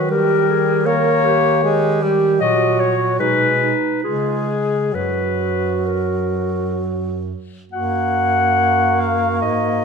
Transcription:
0, 0, Header, 1, 5, 480
1, 0, Start_track
1, 0, Key_signature, 6, "major"
1, 0, Tempo, 773196
1, 58, Time_signature, 3, 2, 24, 8
1, 1499, Tempo, 811908
1, 2459, Tempo, 923077
1, 4379, Tempo, 839161
1, 5589, End_track
2, 0, Start_track
2, 0, Title_t, "Clarinet"
2, 0, Program_c, 0, 71
2, 65, Note_on_c, 0, 70, 63
2, 532, Note_on_c, 0, 73, 65
2, 542, Note_off_c, 0, 70, 0
2, 1257, Note_off_c, 0, 73, 0
2, 1492, Note_on_c, 0, 75, 77
2, 1725, Note_on_c, 0, 73, 62
2, 1734, Note_off_c, 0, 75, 0
2, 1956, Note_off_c, 0, 73, 0
2, 1960, Note_on_c, 0, 71, 69
2, 2445, Note_off_c, 0, 71, 0
2, 2458, Note_on_c, 0, 68, 49
2, 2931, Note_on_c, 0, 71, 51
2, 2939, Note_off_c, 0, 68, 0
2, 3408, Note_on_c, 0, 70, 36
2, 3416, Note_off_c, 0, 71, 0
2, 3898, Note_off_c, 0, 70, 0
2, 4378, Note_on_c, 0, 78, 62
2, 5108, Note_on_c, 0, 77, 55
2, 5116, Note_off_c, 0, 78, 0
2, 5340, Note_off_c, 0, 77, 0
2, 5344, Note_on_c, 0, 75, 54
2, 5589, Note_off_c, 0, 75, 0
2, 5589, End_track
3, 0, Start_track
3, 0, Title_t, "Clarinet"
3, 0, Program_c, 1, 71
3, 0, Note_on_c, 1, 66, 40
3, 67, Note_on_c, 1, 67, 49
3, 76, Note_off_c, 1, 66, 0
3, 300, Note_off_c, 1, 67, 0
3, 304, Note_on_c, 1, 68, 51
3, 533, Note_on_c, 1, 70, 52
3, 542, Note_off_c, 1, 68, 0
3, 774, Note_on_c, 1, 67, 50
3, 784, Note_off_c, 1, 70, 0
3, 1016, Note_off_c, 1, 67, 0
3, 1020, Note_on_c, 1, 67, 46
3, 1502, Note_on_c, 1, 66, 51
3, 1511, Note_off_c, 1, 67, 0
3, 1964, Note_on_c, 1, 63, 45
3, 1973, Note_off_c, 1, 66, 0
3, 2138, Note_off_c, 1, 63, 0
3, 2210, Note_on_c, 1, 63, 44
3, 2457, Note_on_c, 1, 65, 38
3, 2465, Note_off_c, 1, 63, 0
3, 2760, Note_off_c, 1, 65, 0
3, 2926, Note_on_c, 1, 66, 32
3, 4180, Note_off_c, 1, 66, 0
3, 4381, Note_on_c, 1, 66, 41
3, 5589, Note_off_c, 1, 66, 0
3, 5589, End_track
4, 0, Start_track
4, 0, Title_t, "Tenor saxophone"
4, 0, Program_c, 2, 66
4, 60, Note_on_c, 2, 55, 42
4, 536, Note_on_c, 2, 58, 48
4, 545, Note_off_c, 2, 55, 0
4, 1012, Note_off_c, 2, 58, 0
4, 1015, Note_on_c, 2, 56, 54
4, 1256, Note_on_c, 2, 55, 48
4, 1265, Note_off_c, 2, 56, 0
4, 1493, Note_on_c, 2, 54, 45
4, 1502, Note_off_c, 2, 55, 0
4, 1963, Note_on_c, 2, 56, 41
4, 1972, Note_off_c, 2, 54, 0
4, 2287, Note_off_c, 2, 56, 0
4, 2459, Note_on_c, 2, 56, 39
4, 2923, Note_on_c, 2, 54, 31
4, 2931, Note_off_c, 2, 56, 0
4, 4199, Note_off_c, 2, 54, 0
4, 4374, Note_on_c, 2, 58, 41
4, 5589, Note_off_c, 2, 58, 0
4, 5589, End_track
5, 0, Start_track
5, 0, Title_t, "Bass clarinet"
5, 0, Program_c, 3, 71
5, 0, Note_on_c, 3, 51, 41
5, 1472, Note_off_c, 3, 51, 0
5, 1495, Note_on_c, 3, 46, 54
5, 1956, Note_off_c, 3, 46, 0
5, 1967, Note_on_c, 3, 47, 44
5, 2282, Note_off_c, 3, 47, 0
5, 2458, Note_on_c, 3, 49, 39
5, 2906, Note_off_c, 3, 49, 0
5, 2923, Note_on_c, 3, 42, 37
5, 4178, Note_off_c, 3, 42, 0
5, 4373, Note_on_c, 3, 42, 47
5, 5347, Note_on_c, 3, 44, 39
5, 5355, Note_off_c, 3, 42, 0
5, 5589, Note_off_c, 3, 44, 0
5, 5589, End_track
0, 0, End_of_file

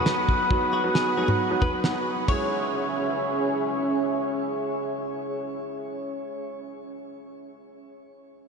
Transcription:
0, 0, Header, 1, 6, 480
1, 0, Start_track
1, 0, Key_signature, 4, "minor"
1, 0, Tempo, 444444
1, 546, Time_signature, 4, 2, 24, 8
1, 9158, End_track
2, 0, Start_track
2, 0, Title_t, "Analog synth pad"
2, 0, Program_c, 0, 89
2, 0, Note_on_c, 0, 71, 81
2, 0, Note_on_c, 0, 78, 71
2, 0, Note_on_c, 0, 87, 85
2, 2423, Note_off_c, 0, 71, 0
2, 2428, Note_off_c, 0, 78, 0
2, 2429, Note_off_c, 0, 87, 0
2, 2468, Note_on_c, 0, 61, 75
2, 2469, Note_on_c, 0, 68, 68
2, 2469, Note_on_c, 0, 76, 82
2, 7128, Note_off_c, 0, 61, 0
2, 7128, Note_off_c, 0, 68, 0
2, 7129, Note_off_c, 0, 76, 0
2, 9158, End_track
3, 0, Start_track
3, 0, Title_t, "Melodica"
3, 0, Program_c, 1, 22
3, 0, Note_on_c, 1, 71, 116
3, 1943, Note_off_c, 1, 71, 0
3, 2466, Note_on_c, 1, 73, 95
3, 7127, Note_off_c, 1, 73, 0
3, 9158, End_track
4, 0, Start_track
4, 0, Title_t, "Clean electric guitar"
4, 0, Program_c, 2, 27
4, 0, Note_on_c, 2, 66, 73
4, 165, Note_off_c, 2, 66, 0
4, 788, Note_on_c, 2, 66, 71
4, 885, Note_off_c, 2, 66, 0
4, 1025, Note_on_c, 2, 68, 69
4, 1222, Note_off_c, 2, 68, 0
4, 1266, Note_on_c, 2, 68, 71
4, 1364, Note_off_c, 2, 68, 0
4, 1746, Note_on_c, 2, 71, 74
4, 2085, Note_off_c, 2, 71, 0
4, 2466, Note_on_c, 2, 73, 73
4, 3863, Note_off_c, 2, 73, 0
4, 9158, End_track
5, 0, Start_track
5, 0, Title_t, "Grand piano"
5, 0, Program_c, 3, 0
5, 67, Note_on_c, 3, 59, 66
5, 67, Note_on_c, 3, 63, 65
5, 68, Note_on_c, 3, 54, 70
5, 68, Note_on_c, 3, 66, 78
5, 480, Note_off_c, 3, 54, 0
5, 480, Note_off_c, 3, 59, 0
5, 480, Note_off_c, 3, 63, 0
5, 480, Note_off_c, 3, 66, 0
5, 547, Note_on_c, 3, 59, 77
5, 547, Note_on_c, 3, 63, 79
5, 547, Note_on_c, 3, 66, 91
5, 548, Note_on_c, 3, 54, 86
5, 857, Note_off_c, 3, 54, 0
5, 857, Note_off_c, 3, 59, 0
5, 857, Note_off_c, 3, 63, 0
5, 857, Note_off_c, 3, 66, 0
5, 908, Note_on_c, 3, 54, 83
5, 908, Note_on_c, 3, 59, 76
5, 908, Note_on_c, 3, 63, 73
5, 908, Note_on_c, 3, 66, 91
5, 1217, Note_off_c, 3, 54, 0
5, 1217, Note_off_c, 3, 59, 0
5, 1217, Note_off_c, 3, 63, 0
5, 1217, Note_off_c, 3, 66, 0
5, 1267, Note_on_c, 3, 54, 84
5, 1267, Note_on_c, 3, 59, 78
5, 1267, Note_on_c, 3, 63, 76
5, 1267, Note_on_c, 3, 66, 89
5, 1577, Note_off_c, 3, 54, 0
5, 1577, Note_off_c, 3, 59, 0
5, 1577, Note_off_c, 3, 63, 0
5, 1577, Note_off_c, 3, 66, 0
5, 1626, Note_on_c, 3, 59, 75
5, 1627, Note_on_c, 3, 54, 81
5, 1627, Note_on_c, 3, 63, 76
5, 1627, Note_on_c, 3, 66, 91
5, 1936, Note_off_c, 3, 59, 0
5, 1937, Note_off_c, 3, 54, 0
5, 1937, Note_off_c, 3, 63, 0
5, 1937, Note_off_c, 3, 66, 0
5, 1985, Note_on_c, 3, 54, 82
5, 1985, Note_on_c, 3, 59, 74
5, 1985, Note_on_c, 3, 63, 77
5, 1985, Note_on_c, 3, 66, 89
5, 2399, Note_off_c, 3, 54, 0
5, 2399, Note_off_c, 3, 59, 0
5, 2399, Note_off_c, 3, 63, 0
5, 2399, Note_off_c, 3, 66, 0
5, 2445, Note_on_c, 3, 56, 79
5, 2459, Note_on_c, 3, 61, 70
5, 2473, Note_on_c, 3, 64, 71
5, 2488, Note_on_c, 3, 68, 84
5, 7753, Note_off_c, 3, 56, 0
5, 7768, Note_off_c, 3, 61, 0
5, 7782, Note_off_c, 3, 64, 0
5, 7796, Note_off_c, 3, 68, 0
5, 9158, End_track
6, 0, Start_track
6, 0, Title_t, "Drums"
6, 65, Note_on_c, 9, 38, 101
6, 173, Note_off_c, 9, 38, 0
6, 308, Note_on_c, 9, 36, 79
6, 416, Note_off_c, 9, 36, 0
6, 546, Note_on_c, 9, 36, 105
6, 654, Note_off_c, 9, 36, 0
6, 1027, Note_on_c, 9, 38, 100
6, 1135, Note_off_c, 9, 38, 0
6, 1384, Note_on_c, 9, 47, 90
6, 1492, Note_off_c, 9, 47, 0
6, 1747, Note_on_c, 9, 36, 91
6, 1749, Note_on_c, 9, 45, 80
6, 1855, Note_off_c, 9, 36, 0
6, 1857, Note_off_c, 9, 45, 0
6, 1986, Note_on_c, 9, 38, 100
6, 2094, Note_off_c, 9, 38, 0
6, 2466, Note_on_c, 9, 36, 97
6, 2466, Note_on_c, 9, 51, 80
6, 2574, Note_off_c, 9, 36, 0
6, 2574, Note_off_c, 9, 51, 0
6, 9158, End_track
0, 0, End_of_file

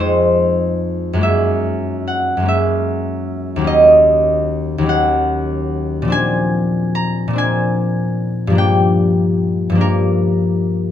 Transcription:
0, 0, Header, 1, 2, 480
1, 0, Start_track
1, 0, Tempo, 826446
1, 722, Time_signature, 6, 3, 24, 8
1, 1202, Tempo, 809717
1, 3602, Tempo, 824176
1, 6396, End_track
2, 0, Start_track
2, 0, Title_t, "Harp"
2, 0, Program_c, 0, 46
2, 0, Note_on_c, 0, 41, 50
2, 0, Note_on_c, 0, 56, 39
2, 0, Note_on_c, 0, 60, 42
2, 0, Note_on_c, 0, 63, 39
2, 0, Note_on_c, 0, 72, 74
2, 0, Note_on_c, 0, 77, 79
2, 0, Note_on_c, 0, 80, 72
2, 545, Note_off_c, 0, 80, 0
2, 658, Note_on_c, 0, 42, 59
2, 660, Note_off_c, 0, 56, 0
2, 667, Note_on_c, 0, 56, 46
2, 682, Note_on_c, 0, 58, 46
2, 703, Note_on_c, 0, 61, 45
2, 709, Note_off_c, 0, 41, 0
2, 713, Note_on_c, 0, 76, 80
2, 727, Note_off_c, 0, 60, 0
2, 732, Note_off_c, 0, 63, 0
2, 736, Note_off_c, 0, 77, 0
2, 740, Note_off_c, 0, 72, 0
2, 1205, Note_on_c, 0, 78, 78
2, 1373, Note_off_c, 0, 42, 0
2, 1380, Note_on_c, 0, 42, 52
2, 1391, Note_off_c, 0, 56, 0
2, 1398, Note_on_c, 0, 56, 45
2, 1402, Note_off_c, 0, 58, 0
2, 1410, Note_on_c, 0, 58, 43
2, 1423, Note_off_c, 0, 61, 0
2, 1430, Note_on_c, 0, 61, 45
2, 1440, Note_off_c, 0, 76, 0
2, 1448, Note_on_c, 0, 76, 84
2, 2086, Note_on_c, 0, 39, 62
2, 2101, Note_on_c, 0, 54, 53
2, 2110, Note_off_c, 0, 58, 0
2, 2117, Note_on_c, 0, 58, 51
2, 2126, Note_off_c, 0, 61, 0
2, 2133, Note_on_c, 0, 61, 54
2, 2146, Note_off_c, 0, 42, 0
2, 2152, Note_on_c, 0, 75, 98
2, 2155, Note_off_c, 0, 56, 0
2, 2179, Note_off_c, 0, 76, 0
2, 2803, Note_off_c, 0, 39, 0
2, 2810, Note_on_c, 0, 39, 59
2, 2820, Note_off_c, 0, 54, 0
2, 2827, Note_on_c, 0, 54, 45
2, 2830, Note_off_c, 0, 58, 0
2, 2837, Note_on_c, 0, 58, 44
2, 2851, Note_off_c, 0, 61, 0
2, 2858, Note_on_c, 0, 61, 47
2, 2866, Note_off_c, 0, 78, 0
2, 2874, Note_on_c, 0, 78, 96
2, 3544, Note_on_c, 0, 46, 66
2, 3561, Note_on_c, 0, 53, 54
2, 3577, Note_on_c, 0, 60, 55
2, 3585, Note_off_c, 0, 39, 0
2, 3590, Note_on_c, 0, 62, 59
2, 3594, Note_off_c, 0, 54, 0
2, 3604, Note_on_c, 0, 80, 107
2, 3609, Note_off_c, 0, 61, 0
2, 3617, Note_off_c, 0, 75, 0
2, 3617, Note_off_c, 0, 78, 0
2, 4086, Note_on_c, 0, 82, 105
2, 4270, Note_off_c, 0, 46, 0
2, 4277, Note_on_c, 0, 46, 59
2, 4285, Note_off_c, 0, 53, 0
2, 4292, Note_on_c, 0, 53, 48
2, 4302, Note_off_c, 0, 60, 0
2, 4309, Note_on_c, 0, 60, 52
2, 4316, Note_off_c, 0, 62, 0
2, 4323, Note_on_c, 0, 62, 53
2, 4331, Note_off_c, 0, 80, 0
2, 4338, Note_on_c, 0, 80, 99
2, 4973, Note_on_c, 0, 43, 68
2, 4983, Note_off_c, 0, 53, 0
2, 4990, Note_on_c, 0, 53, 59
2, 4993, Note_off_c, 0, 58, 0
2, 5000, Note_on_c, 0, 58, 56
2, 5012, Note_off_c, 0, 62, 0
2, 5019, Note_on_c, 0, 62, 52
2, 5036, Note_off_c, 0, 46, 0
2, 5037, Note_on_c, 0, 79, 104
2, 5052, Note_off_c, 0, 60, 0
2, 5066, Note_off_c, 0, 80, 0
2, 5679, Note_off_c, 0, 43, 0
2, 5686, Note_on_c, 0, 43, 66
2, 5692, Note_off_c, 0, 53, 0
2, 5699, Note_on_c, 0, 53, 52
2, 5711, Note_off_c, 0, 58, 0
2, 5718, Note_on_c, 0, 58, 54
2, 5722, Note_off_c, 0, 62, 0
2, 5729, Note_on_c, 0, 62, 48
2, 5751, Note_on_c, 0, 70, 86
2, 6358, Note_off_c, 0, 82, 0
2, 6396, Note_off_c, 0, 43, 0
2, 6396, Note_off_c, 0, 53, 0
2, 6396, Note_off_c, 0, 58, 0
2, 6396, Note_off_c, 0, 62, 0
2, 6396, Note_off_c, 0, 70, 0
2, 6396, Note_off_c, 0, 79, 0
2, 6396, End_track
0, 0, End_of_file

